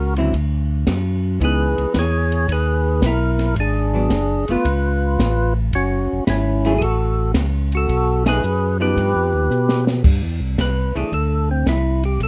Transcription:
Already playing: C#2 F#4 A#4
0.16 D3 F#3 C4 E4, ride
0.33 D2, kick, ride
0.87 F#2, kick, snare, hi-hat pedal, ride
1.40 C#2 E3 B3 D#4 G#4, kick, ride
1.45 B4
1.78 C#2, ride
1.94 E2, kick, snare, hi-hat pedal, ride
1.99 G#4 C#5
2.32 ride
2.48 D#2 G#4 B4, kick, ride
3.02 B1, kick, snare, hi-hat pedal, ride
3.06 E4 A#4
3.39 snare, ride
3.56 G#1 D4, kick, ride
3.60 G#4
3.94 F#3 B3 D4
4.10 F#1, kick, snare, hi-hat pedal, ride
4.48 F#1 A3 B3 F4, ride
4.52 B4
4.65 C#2, kick, ride
5.19 A1, kick, snare, hi-hat pedal, ride
5.73 F#1 C#4 F#4, kick, ride
6.12 F#1
6.27 G#1 C#4 E4, kick, snare, hi-hat pedal, ride
6.65 F#3 A3 E4 G#4, ride
6.78 A1 G#4 A4, kick, ride
6.84 F#4
7.34 C#2, kick, snare, hi-hat pedal, ride
7.72 F#4, ride
7.77 A4
7.88 B1, kick, ride
8.26 A3 D#4 G#4 B4, snare, ride
8.43 F#2, hi-hat pedal
8.80 F3 B3 D#4 G4 B4
8.96 G2, kick, ride
9.15 F2
9.33 D#2
9.50 B2, hi-hat pedal
9.69 snare
9.87 snare
10.04 G2, kick, crash
10.22 E2
10.40 C2
10.58 C2 B4, kick, snare, hi-hat pedal, ride
10.95 C2 E3 A3 D4 G#4, ride
11.12 D2 A4, kick, ride
11.51 C4
11.66 C2 E4, kick, snare, hi-hat pedal, ride
12.03 G4, ride
12.20 B1 A4, kick, ride

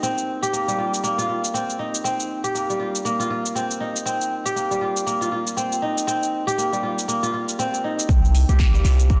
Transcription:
Already playing: A#3 D#4 F4
0.03 C4, shaker
0.18 shaker
0.42 G4, shaker
0.53 A#3, shaker
0.68 G3, shaker
0.78 F4
0.94 shaker
1.03 A#3, shaker
1.18 F4, shaker
1.29 F4
1.44 shaker
1.54 C4, shaker
1.70 shaker
1.79 D#4
1.95 shaker
2.04 C4, shaker
2.20 shaker
2.44 G4, shaker
2.55 A#3, shaker
2.69 G3, shaker
2.80 F4
2.95 shaker
3.05 A#3, shaker
3.20 F4, shaker
3.30 F4
3.46 shaker
3.55 C4, shaker
3.71 shaker
3.80 D#4
3.96 shaker
4.06 C4, shaker
4.21 shaker
4.46 G4, shaker
4.56 A#3, shaker
4.71 G3, shaker
4.81 F4
4.97 shaker
5.07 A#3, shaker
5.21 F4, shaker
5.32 F4
5.47 shaker
5.57 C4, shaker
5.72 shaker
5.82 D#4
5.98 shaker
6.07 C4, shaker
6.23 shaker
6.47 G4, shaker
6.58 A#3, shaker
6.72 G3, shaker
6.83 F4
6.99 shaker
7.08 A#3, shaker
7.23 F4, shaker
7.34 F4
7.49 shaker
7.59 C4, shaker
7.74 shaker
7.84 D#4
7.99 shaker
8.09 C2 C4, kick, closed hi-hat, shaker
8.25 shaker
8.35 open hi-hat, shaker
8.49 C2 G4, closed hi-hat, mid tom, shaker
8.59 A#3, kick, clap, open hi-hat, shaker
8.74 G3, shaker
8.84 C2 F4, clap, open hi-hat, shaker
9.00 closed hi-hat, shaker
9.10 A#3, kick, closed hi-hat, shaker

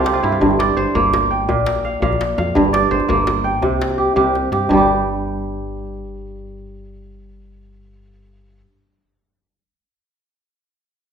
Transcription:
Already playing: C2 C3 F4 A4 A#4 C5 D5
0.04 G4, djembe slap
0.14 F4
0.23 G2 E4, djembe tone
0.32 F4
0.41 G1 G2, djembe bass
0.51 djembe tone
0.59 D5, djembe slap
0.68 djembe slap
0.77 G1 C5
0.95 G1 A#3, djembe bass
1.14 djembe slap, djembe tone
1.23 djembe slap
1.31 G5
1.49 A#1 A#2, djembe slap, djembe tone, djembe bass
1.66 djembe slap
1.76 djembe slap, djembe tone
1.85 F5
1.94 djembe slap
2.02 A#1 A#2 F5, djembe bass
2.13 djembe tone
2.21 djembe slap
2.38 F2 F5, djembe tone
2.55 G1 G2, djembe bass
2.65 djembe tone
2.73 D5, djembe slap
2.83 djembe slap
2.91 G1 C5
3.00 djembe slap, djembe tone
3.09 G1 A#3, djembe bass
3.18 djembe slap
3.27 djembe slap, djembe tone
3.44 G5
3.62 C2 C3, djembe slap, djembe tone, djembe bass
3.81 djembe slap
3.90 djembe tone
3.98 G4
4.16 C2 C3 G4, djembe bass
4.35 djembe slap
4.52 G2 G4, djembe slap
4.69 G1 G2 G3, djembe bass
4.77 G4

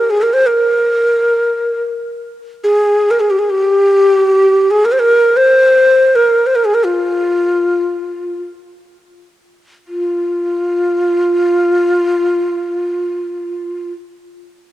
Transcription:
0.00 A#4
0.10 G#4
0.22 A#4
0.33 C5
0.46 A#4
2.64 G#4
3.11 A#4
3.20 G#4
3.30 G4
3.39 G#4
3.50 G4
4.71 G#4
4.85 A#4
4.92 C5
4.99 A#4
5.37 C5
6.15 A#4
6.46 C5
6.55 A#4
6.65 G#4
6.74 A#4
6.85 F4
9.88 F4

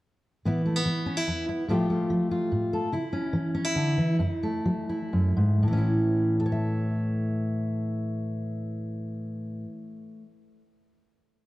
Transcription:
0.45 A2 E3 B3 E4
0.65 A3
0.76 B3
0.86 E3
1.06 C#4
1.17 E4
1.27 E2
1.49 E4
1.68 A2 F3 A3 F4 G4
1.90 A3
2.10 F3
2.31 F4
2.52 A2
2.73 A4
2.92 C#3 E4
3.13 C#4
3.33 E3
3.55 C#4
3.65 E4
3.76 D3
3.98 E3
4.19 F#2 E4
4.43 A3
4.65 F#3
4.89 E4
5.13 F#2
5.37 G#2
5.63 A2
5.68 E3
5.73 C#4
5.77 E4
6.40 A4
6.46 C#5
6.52 E5

